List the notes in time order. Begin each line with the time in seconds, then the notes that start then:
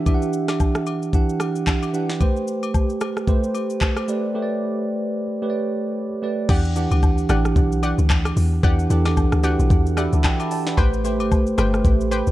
Already playing: E3 D4 G4 E5
0.06 E3 D4 G4 E5, kick, high agogo, shaker
0.14 F#5
0.22 shaker
0.33 shaker
0.48 cross-stick, snare, high agogo, shaker
0.60 kick, low woodblock, shaker
0.75 cross-stick, shaker
0.86 high agogo, shaker
1.03 shaker
1.13 E3 D4 G4 F#5, kick, shaker
1.29 shaker
1.40 cross-stick, high agogo, shaker
1.56 shaker
1.67 kick, snare, clap, low woodblock, shaker
1.83 high agogo, shaker
1.93 E3 D4 G4 F#5, shaker
2.10 snare
2.20 A3 G4 B4 C5, kick, high agogo, shaker
2.36 shaker
2.48 shaker
2.63 high agogo, shaker
2.74 kick, low woodblock, shaker
2.90 shaker
3.01 cross-stick, high agogo, shaker
3.17 cross-stick, shaker
3.27 A3 G4 B4 C5, kick, shaker
3.44 shaker
3.55 high agogo, shaker
3.70 shaker
3.81 kick, clap, low woodblock, shaker
3.96 cross-stick, high agogo, shaker
4.08 A3 G4 B4 D5, shaker
4.34 A3 G4 B4 C#5
4.43 D5
5.42 A3 G4 B4 C#5
5.50 D5
6.22 A3 G4 B4 D5
6.49 E2 E3 D4 G4 D5 F#5, kick, crash, high agogo, shaker
6.65 shaker
6.75 E3 D4 G4 F#5, shaker
6.91 D2, high agogo, shaker
7.03 kick, low woodblock, shaker
7.18 shaker
7.29 A1 E3 D4 G4 D5 F#5, cross-stick, high agogo, shaker
7.45 cross-stick, shaker
7.56 B1, kick, shaker
7.72 shaker
7.83 G4 D5 F#5, high agogo, shaker
7.98 D2, shaker
8.10 kick, clap, low woodblock, shaker
8.25 cross-stick, high agogo, shaker
8.37 E2, open hi-hat, shaker
8.63 E2 E3 D4 G4 D5 F#5, kick, high agogo, shaker
8.79 shaker
8.90 E2 E3 D4 G4 A4, shaker
9.05 cross-stick, snare, high agogo, shaker
9.17 kick, low woodblock, shaker
9.32 D2, cross-stick, shaker
9.43 E3 D4 F#4 G4 D5 F#5, high agogo, shaker
9.51 G4
9.59 B1, shaker
9.70 E2, kick, shaker
9.86 shaker
9.97 G4 D5 E5 F#5 B5 E6, cross-stick, high agogo, shaker
10.13 D2 A5 D6, shaker
10.24 F#5 G5 B5, kick, snare, clap, low woodblock, shaker
10.40 E5 A5, high agogo, shaker
10.51 D5 G5 A5, open hi-hat, shaker
10.67 B4 F#5, snare
10.77 A1 A3 G4 B4 C5 G5, kick, high agogo, shaker
10.93 shaker
11.04 A3 G4 B4 C5, shaker
11.20 G1, high agogo, shaker
11.31 kick, low woodblock, shaker
11.47 shaker
11.58 G1 A3 G4 B4 C5 G5, cross-stick, high agogo, shaker
11.74 cross-stick, shaker
11.85 A1, kick, shaker
12.01 shaker
12.11 B4 C5 G5, high agogo, shaker
12.27 B1, shaker